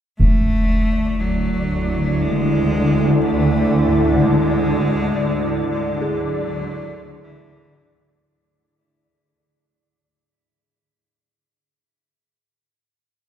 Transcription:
0.19 D2 D3 A3 E4 D5, concert bass drum
1.20 F#3
2.22 G#3
3.22 A3
3.84 G#2 D5
4.21 G#3
5.71 G#3
6.02 G#4
6.22 F#3
7.24 E3

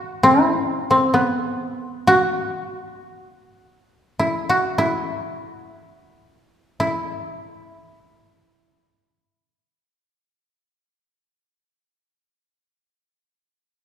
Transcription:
Already playing: F#4
0.23 E4
0.91 C4
1.14 B3
2.07 F#4
2.84 G4
3.00 F#4
3.26 G4
3.42 F#4
4.19 E4
4.49 F#4
4.78 E4
6.80 E4

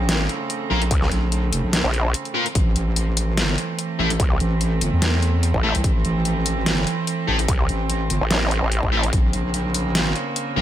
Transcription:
Already playing: A#1 C#3 A3 C4
0.04 A1
0.09 snare, closed hi-hat
0.29 closed hi-hat
0.50 closed hi-hat
0.70 A#1 A#3 F4 A#4
0.82 closed hi-hat
0.91 C#2, kick, closed hi-hat
1.02 snare
1.11 A#1, closed hi-hat
1.32 closed hi-hat
1.53 F1, open hi-hat
1.64 A#1
1.73 snare, closed hi-hat
1.84 A#1
1.94 closed hi-hat
2.14 closed hi-hat
2.25 closed hi-hat
2.35 A#3 F4 A#4
2.46 closed hi-hat
2.55 A1 E3 A3 C4, kick, closed hi-hat
2.76 A1, closed hi-hat
2.96 closed hi-hat
3.17 open hi-hat
3.33 G#1
3.37 snare, closed hi-hat
3.58 closed hi-hat
3.79 closed hi-hat
3.99 A1 A3 E4 A4
4.10 closed hi-hat
4.20 C2, kick, closed hi-hat
4.40 A1, closed hi-hat
4.61 closed hi-hat
4.81 G1, open hi-hat
4.93 E2
5.02 snare, closed hi-hat
5.22 closed hi-hat
5.43 closed hi-hat
5.54 A1, kick
5.63 A3 E4 A4
5.75 C2, closed hi-hat
5.84 A1, kick, closed hi-hat
6.05 A1, closed hi-hat
6.25 closed hi-hat
6.46 open hi-hat
6.62 G#1
6.66 snare, closed hi-hat
6.87 closed hi-hat
7.07 closed hi-hat
7.28 A1 A3 E4 A4
7.39 closed hi-hat
7.48 C2, kick, closed hi-hat
7.69 A1, closed hi-hat
7.90 closed hi-hat
8.10 G1, open hi-hat
8.21 A1
8.31 snare, closed hi-hat
8.51 closed hi-hat
8.62 A1
8.72 closed hi-hat
8.83 A1, kick
8.92 A3 E4 A4
9.03 closed hi-hat
9.13 A#1 C#3 A#3, kick, closed hi-hat
9.33 A#1, closed hi-hat
9.54 closed hi-hat
9.74 open hi-hat
9.90 A1
9.95 snare, closed hi-hat
10.16 closed hi-hat
10.36 closed hi-hat
10.56 A#1 A#3 F4 A#4

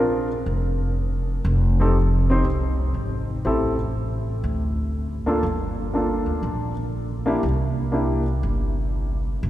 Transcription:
Already playing: A#1 C4 D4
0.00 F4 A#4
0.46 F1
1.45 F1
1.80 C4 D#4 G4 A4
2.30 C4 D#4 G4 C5
2.44 C2
2.94 G#1
3.45 A1 C4 E4 G4 A4
4.44 D2
5.26 A#3 D4 F4 A4, muted upright bass stroke
5.43 G1
5.94 A#3 D4 F4 A4
6.26 D2
6.43 A#1
7.26 A#3 D4 E4 G4
7.43 C2
7.92 A#3 D4 E4 G4
8.43 G1
9.43 F1

